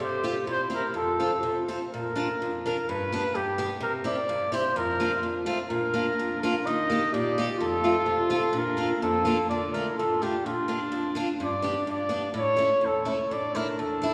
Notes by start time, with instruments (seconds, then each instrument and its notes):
0.00 steel-string acoustic guitar C3, clarinet G4, trumpet C5
0.23 steel-string acoustic guitar C4 F4 G4
0.47 steel-string acoustic guitar C3, clarinet E4
0.52 trumpet C5
0.70 steel-string acoustic guitar C4 E4 G4
0.75 trumpet A#4
0.88 trumpet A#4
0.94 steel-string acoustic guitar F2, clarinet F4, trumpet A4
1.20 steel-string acoustic guitar C4 F4 A4
1.39 steel-string acoustic guitar C3, clarinet G4
1.45 clarinet F4
1.68 steel-string acoustic guitar C4 F4 A4
1.93 steel-string acoustic guitar A#2, trumpet A#4
2.16 steel-string acoustic guitar D4 F4 A#4
2.42 steel-string acoustic guitar F2
2.65 steel-string acoustic guitar D4 F4 A#4, trumpet A#4
2.89 steel-string acoustic guitar G2, trumpet B4
3.12 steel-string acoustic guitar B3 D4 G4
3.35 steel-string acoustic guitar G2, trumpet G4
3.58 steel-string acoustic guitar B3 D4 G4
3.80 steel-string acoustic guitar C3, trumpet A#4
4.04 steel-string acoustic guitar C4 E4 G4, trumpet D5
4.29 steel-string acoustic guitar G2
4.52 steel-string acoustic guitar C4 E4 G4, trumpet C5
4.76 steel-string acoustic guitar F2, trumpet A#4
5.00 steel-string acoustic guitar A#3 D4 F4
5.23 steel-string acoustic guitar F2
5.46 steel-string acoustic guitar A3 C4 F4
5.69 steel-string acoustic guitar A#2, clarinet D4, trumpet A#4
5.94 steel-string acoustic guitar A#3 D4 F4
6.19 steel-string acoustic guitar F2
6.42 steel-string acoustic guitar A#3 D4 F4, trumpet A#4
6.66 steel-string acoustic guitar D#3, clarinet D#4, trumpet D#5
6.90 steel-string acoustic guitar A#3 D#4 G4
7.12 steel-string acoustic guitar A#2, clarinet G4, trumpet D5
7.38 steel-string acoustic guitar A#3 D#4 G4
7.58 steel-string acoustic guitar F2, clarinet F4
7.62 trumpet A4
7.84 steel-string acoustic guitar A3 C4 F4
8.06 steel-string acoustic guitar C3
8.30 steel-string acoustic guitar A3 C4 F4
8.35 trumpet A4
8.53 steel-string acoustic guitar A#2, clarinet D4
8.59 trumpet A#4
8.77 steel-string acoustic guitar A#3 D4 F4
9.02 steel-string acoustic guitar F2, clarinet A#3, trumpet A4
9.25 steel-string acoustic guitar A#3 D4 F4
9.49 steel-string acoustic guitar D3, clarinet D4, trumpet D5
9.73 steel-string acoustic guitar A3 D4 F4, trumpet A#4
9.89 clarinet E4
9.97 steel-string acoustic guitar A2, clarinet F4, trumpet A4
10.22 steel-string acoustic guitar A3 D4 F4, trumpet G4
10.45 steel-string acoustic guitar A#2, clarinet D4, trumpet F4
10.68 steel-string acoustic guitar A#3 D4 F4
10.92 steel-string acoustic guitar F2
11.15 steel-string acoustic guitar A#3 D4 F4
11.40 steel-string acoustic guitar G2, clarinet D4, trumpet D5
11.62 steel-string acoustic guitar B3 D4 G4
11.87 steel-string acoustic guitar G2, trumpet D5
12.09 steel-string acoustic guitar B3 D4 G4
12.34 steel-string acoustic guitar A2, clarinet E4
12.38 trumpet C#5
12.56 steel-string acoustic guitar A3 C#4 E4
12.81 steel-string acoustic guitar E2
12.86 trumpet A4
13.05 steel-string acoustic guitar A3 C#4 E4, trumpet C#5
13.31 steel-string acoustic guitar A2, clarinet D4, trumpet D5
13.55 steel-string acoustic guitar A3 D4 E4, trumpet A#4
13.79 steel-string acoustic guitar E2, trumpet A4
14.02 steel-string acoustic guitar A3 D4 E4